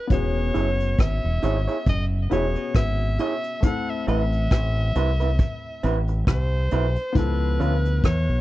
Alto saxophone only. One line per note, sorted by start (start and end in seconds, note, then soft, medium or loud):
0.12 1.03 C#5 loud
1.01 1.88 E5 loud
1.89 2.05 D#5 loud
2.32 2.73 C#5 medium
2.77 3.17 E5 loud
3.20 3.65 E5 loud
3.64 3.91 F#5 loud
3.90 4.08 E5 medium
4.09 5.99 E5 loud
6.29 7.18 C5 loud
7.17 8.04 B4 loud
8.05 8.41 C#5 loud